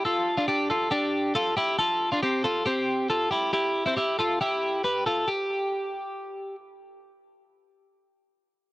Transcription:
\new Staff \with { instrumentName = "Clean electric guitar" } { \time 4/4 \key c \major \tempo 4 = 137 <f' a'>8. <d' f'>16 <d' g'>8 <f' a'>8 <d' g'>4 <f' a'>8 <e' g'>8 | <f' a'>8. <d' f'>16 <c' g'>8 <f' a'>8 <c' g'>4 <f' a'>8 <e' g'>8 | <e' g'>8. <c' e'>16 <e' g'>8 <f' a'>8 <e' g'>4 <g' b'>8 <f' a'>8 | g'2. r4 |
r1 | }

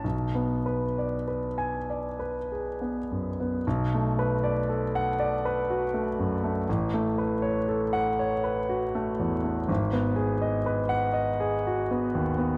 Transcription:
\new Staff \with { instrumentName = "Grand piano" } { \time 6/8 \key b \dorian \tempo 4. = 40 << { r4 r16 gis''8 r4 r16 | r4 r16 fis''8 r4 r16 | r4 r16 fis''8 r4 r16 | r4 r16 fis''8 r4 r16 | } \\ { b,,16 b16 b'16 d''16 b'8 d''16 b'16 gis'16 b16 fis,16 b16 | b,,16 a16 b'16 d''16 a'8 d''16 b'16 fis'16 a16 fis,16 a16 | a,,16 a16 b'16 cis''16 a'8 cis''16 b'16 fis'16 a16 e,16 a16 | gis,,16 b16 gis'16 dis''16 b'8 dis''16 gis'16 fis'16 b16 dis,16 b16 | } >> }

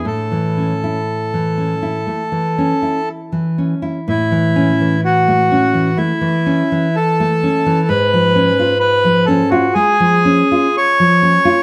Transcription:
<<
  \new Staff \with { instrumentName = "Bandoneon" } { \time 4/4 \key a \major \tempo 4 = 62 a'2. r4 | e'4 fis'4 e'4 a'4 | b'4 b'8 a'16 fis'16 gis'4 cis''4 | }
  \new Staff \with { instrumentName = "Nylon-string guitar" } { \time 4/4 \key a \major a,16 e16 cis'16 e'8 e16 cis'16 e'16 a16 e16 cis'16 e'8 e16 cis'16 e'16 | a,16 e16 cis'16 e8 a16 cis'16 e16 a16 e16 cis'16 e8 a16 cis'16 e16 | gis,16 eis16 cis'16 eis'8 eis16 cis'16 eis'16 gis16 eis16 cis'16 eis'8 eis16 cis'16 eis'16 | }
>>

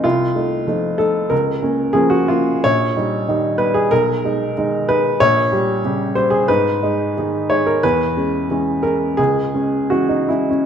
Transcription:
<<
  \new Staff \with { instrumentName = "Upright piano" } { \time 4/4 \key bes \phrygian \tempo 4 = 92 f'4. a'8 bes'4 aes'16 ges'16 f'8 | \key gis \minor cis''4. b'16 gis'16 ais'4. b'8 | des''4. bis'16 gis'16 b'4. cis''16 ais'16 | b'4. ais'8 gis'4 fis'16 dis'16 e'16 cis'16 | }
  \new Staff \with { instrumentName = "Upright piano" } { \clef bass \time 4/4 \key bes \phrygian c,8 <a ees'>8 <f a ees'>8 <a ees'>8 des,8 <bes des'>8 <f bes des'>8 <bes des'>8 | \key gis \minor ais,,8 <g dis'>8 <dis g dis'>8 <g dis'>8 b,,8 <gis dis'>8 <dis gis dis'>8 <gis dis'>8 | bes,,8 <g g'>8 <des g g'>8 <g g'>8 gis,8 <gis dis'>8 <dis gis dis'>8 <gis dis'>8 | e,8 <gis cis'>8 <e gis cis'>8 <gis cis'>8 cis,8 <gis cis'>8 <e gis cis'>8 <gis cis'>8 | }
>>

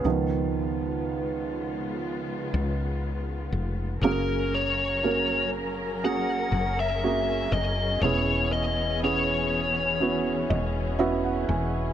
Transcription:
<<
  \new Staff \with { instrumentName = "Lead electric guitar" } { \time 4/4 \key cis \mixolydian \tempo 4 = 60 r1 | \key fis \mixolydian ais'8 cis''4 r8 fis''8. e''8. dis''8 | cis''8 dis''8 cis''2~ cis''8 r8 | }
  \new Staff \with { instrumentName = "Felt piano" } { \time 4/4 \key cis \mixolydian r1 | \key fis \mixolydian <ais cis' fis' gis'>4 <ais cis' fis' ais'>4 <ais cis' fis' gis'>4 <ais cis' fis' gis'>4 | <b cis' e' gis'>4 <b cis' e' gis'>4 <b cis' e' fis'>4 <b cis' e' fis'>4 | }
  \new Staff \with { instrumentName = "Felt piano" } { \time 4/4 \key cis \mixolydian <dis eis b>1 | \key fis \mixolydian cis4. r2 r8 | b,4. r4 dis''8 e''16 fis''16 gis''8 | }
  \new Staff \with { instrumentName = "String section" } { \time 4/4 \key cis \mixolydian << { <cis gis eis'>1 | \key fis \mixolydian <fis cis' ais'>1 | <e b>1 | } \\ { b1 | gis'1~ | gis'1 | } >> }
  \new Staff \with { instrumentName = "Fretless electric bass" } { \clef bass \time 4/4 \key cis \mixolydian cis,2~ cis,8 cis,4 eis,,8 | \key fis \mixolydian fis,,2~ fis,,8 fis,,4 fis,,8 | e,,2~ e,,8 e,,4 e,,8 | }
>>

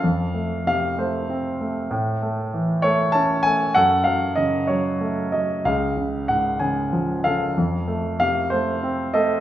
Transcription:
<<
  \new Staff \with { instrumentName = "Grand piano" } { \time 6/8 \key f \phrygian \tempo 4. = 64 << { f''4 f''8 c''4 r8 | r4. cis''8 a''8 aes''8 | ges''8 f''8 ees''8 des''4 ees''8 | f''4 ges''8 aes''4 f''8~ |
f''4 f''8 c''4 ees''8 | } \\ { a'4 r2 | r2. | a'4. r4. | aes'4. r4 a'8~ |
a'4 r4. a'8 | } >> }
  \new Staff \with { instrumentName = "Grand piano" } { \clef bass \time 6/8 \key f \phrygian f,8 a8 c8 a8 c'8 a8 | a,8 a8 e8 a8 cis'8 a8 | ges,8 ges8 des8 ges8 a8 ges8 | des,8 des8 aes,8 des8 f8 des8 |
f,8 a8 c8 a8 c'8 a8 | }
>>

